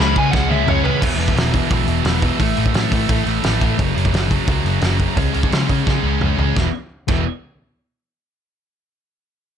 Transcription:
Already playing: C#3 G#3 C#4
0.00 C#2 B5
0.14 C#2 C#3 G#3 C#4, kick
0.18 G#5
0.31 C#2 C#3 G#3 C#4 F#5, kick, snare
0.49 C#3 G#3 C#4 E5, high tom
0.66 C#2 C#3 G#3 C#4 C#5, mid tom
0.82 C#3 G#3 C#4 B4, floor tom
0.87 C#3 G#3
1.00 E1 E2 B2 E3, kick, crash
1.15 E1 E2 B2 E3
1.21 open hi-hat
1.28 kick
1.34 E1 E2 B2 E3, open hi-hat
1.39 snare
1.52 E2 B2 E3, kick, open hi-hat
1.68 B1 E2 B2 E3, kick, open hi-hat
1.85 E1 E2 B2 E3, open hi-hat
2.03 E1 E2 B2 E3, snare, open hi-hat
2.22 E2 B2 E3, kick, open hi-hat
2.39 A1 A2 E3 A3, kick, open hi-hat
2.56 A1 A2 E3 A3, open hi-hat
2.66 kick
2.73 A2 E3 A3, snare, open hi-hat
2.90 A2 E3 A3, kick, open hi-hat
3.08 A2 E3 A3, kick, open hi-hat
3.25 A1 A2 E3 A3, open hi-hat
3.42 A1 A2 E3 A3, snare, open hi-hat
3.60 A1 A2 E3 A3, kick, open hi-hat
3.77 F#1 F#2 C#3 F#3, kick, open hi-hat
3.94 F#1 F#2 C#3 F#3, open hi-hat
4.05 kick
4.11 F#1 F#2 C#3 F#3, snare, open hi-hat
4.28 F#2 C#3 F#3, kick, open hi-hat
4.46 C#2 F#2 C#3 F#3, kick, open hi-hat
4.64 F#1 F#2 C#3 F#3, open hi-hat
4.81 F#1 F#2 C#3 F#3, snare, open hi-hat
4.99 F#2 C#3 F#3, kick, open hi-hat
5.17 C#2 C#3 G#3 C#4, kick, open hi-hat
5.34 C#2 C#3 G#3 C#4, open hi-hat
5.43 kick
5.50 C#3 G#3 C#4, snare, open hi-hat
5.67 C#3 G#3 C#4, kick, open hi-hat
5.86 C#3 G#3 C#4, kick, snare
6.02 C#2 C#3 G#3 C#4
6.06 C#3 C#4
6.20 C#2 C#3 G#3 C#4, mid tom
6.25 C#4
6.37 C#2 C#3 G#3 C#4, floor tom
6.56 E1 E2 B2 E3, kick, snare
7.08 E1 E2 B2 E3, kick, crash

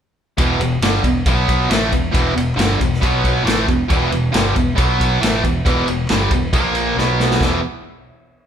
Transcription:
0.37 E1 E2 B2 E3, kick, ride
0.60 E1 E2 B2, ride
0.81 G1 G2 D3 G3, snare, ride
1.04 E1 E2 B2, kick, ride
1.26 B1 B2 F#3 B3, kick, ride
1.48 kick, ride
1.69 A1 A2 E3 A3, snare, ride
1.91 E1 E2 B2, kick, ride
2.12 E1 E2 B2 E3, kick, ride
2.35 E1 E2 B2, ride
2.56 G1 G2 D3 G3, snare, ride
2.79 E1 E2 B2, kick, ride
2.93 snare
3.01 B1 B2 F#3 B3, kick, ride
3.24 kick, ride
3.43 A1 A2 E3 A3, ride
3.48 snare
3.66 E1 E2 B2, kick, ride
3.88 E1 E2 B2 E3, kick, ride
4.10 E1 E2 B2, ride
4.32 G1 G2 D3 G3, snare, ride
4.55 E1 E2 B2, kick, ride
4.76 B1 B2 F#3 B3, kick, ride
5.00 kick, ride
5.21 A1 A2 E3 A3, snare, ride
5.43 E1 E2 B2, kick, ride
5.65 E1 E2 B2 E3, kick, ride
5.87 E1 E2 B2, ride
6.09 G1 G2 D3 G3, snare, ride
6.31 E1 E2 B2, kick, ride
6.53 A#1 A#2 F3 A#3, kick, ride
6.75 ride
6.97 B1 B2 F#3 B3, snare
7.20 snare
7.31 snare
7.40 E1 E2 B2 E3, kick, snare

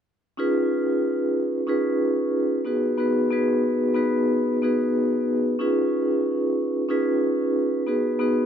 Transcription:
0.37 C#4 D#4 F4 G#4 B4
1.67 C#4 D#4 F4 G#4 B4
2.65 B3 D#4 F#4 G#4 B4
2.98 B3 D#4 F#4 G#4 B4
3.30 B3 D#4 F#4 G#4 B4
3.94 B3 D#4 F#4 G#4 B4
4.62 B3 D#4 F#4 G#4 B4
5.59 C#4 D#4 F4 G#4 B4
6.89 C#4 D#4 F4 G#4 B4
7.86 B3 D#4 F#4 G#4 B4
8.19 B3 D#4 F#4 G#4 B4

